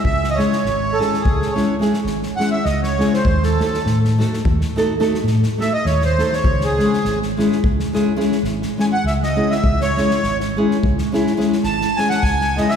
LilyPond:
<<
  \new Staff \with { instrumentName = "Accordion" } { \time 11/8 \key cis \minor \tempo 4 = 103 e''16. dis''32 cis''4 a'8 gis'8 cis''8 r4 fis''16 e''16 dis''16 cis''8 bis'16~ | bis'16 a'4 r2 r8. e''16 dis''16 cis''16 bis'8 cis''16~ | cis''16 gis'4 r2 r8. gis''16 fis''16 e''16 dis''8 e''16~ | e''16 cis''4 r2 r16 a''8 gis''16 fis''16 gis''8 dis''16 e''32 r32 | }
  \new Staff \with { instrumentName = "Nylon-string guitar" } { \time 11/8 \key cis \minor r8 <gis cis' e' gis'>8 r8 <gis cis' e' gis'>8 r8 <gis cis' e' gis'>8 <gis cis' e' gis'>8 r8 <gis cis' e' gis'>8 r8 <gis cis' e' gis'>8 | r8 <a dis' fis' a'>8 r8 <a dis' fis' a'>8 r8 <a dis' fis' a'>8 <a dis' fis' a'>8 r8 <a dis' fis' a'>8 r8 <a dis' fis' a'>8 | r8 <gis cis' e' gis'>8 r8 <gis cis' e' gis'>8 r8 <gis cis' e' gis'>8 <gis cis' e' gis'>8 r8 <gis cis' e' gis'>8 r8 <gis cis' e' gis'>8 | r8 <gis cis' e' gis'>8 r8 <gis cis' e' gis'>8 r8 <gis cis' e' gis'>8 <gis cis' e' gis'>8 r8 <gis cis' e' gis'>8 r8 <gis cis' e' gis'>8 | }
  \new Staff \with { instrumentName = "Fingered electric bass" } { \clef bass \time 11/8 \key cis \minor cis,4 gis,,4 cis,8 r4 gis,,8 r8 cis,4 | dis,4 a,4 dis,8 r4 a,8 r8 dis,4 | cis,4 gis,,4 cis,8 r4 gis,,8 r8 cis,4 | cis,4 gis,,4 cis,8 r4 gis,,8 r8 cis,4 | }
  \new DrumStaff \with { instrumentName = "Drums" } \drummode { \time 11/8 bd16 sn16 sn16 sn16 sn8 sn16 sn16 bd16 sn16 sn8 sn16 sn16 sn16 sn16 sn8 sn16 sn16 sn16 sn16 | bd16 sn16 sn16 sn16 sn16 sn16 sn16 sn16 bd16 sn16 sn8 sn16 sn16 sn16 sn16 sn8 sn16 sn16 sn16 sn16 | bd16 sn16 sn16 sn16 sn16 sn16 sn16 sn16 bd16 sn16 sn8 sn16 sn16 sn16 sn16 sn8 sn16 sn8 sn16 | bd16 sn16 sn16 sn16 sn16 sn8 sn16 bd16 sn16 sn16 sn16 sn16 sn16 sn16 sn16 sn16 sn16 <bd sn>16 sn16 sn16 sn16 | }
>>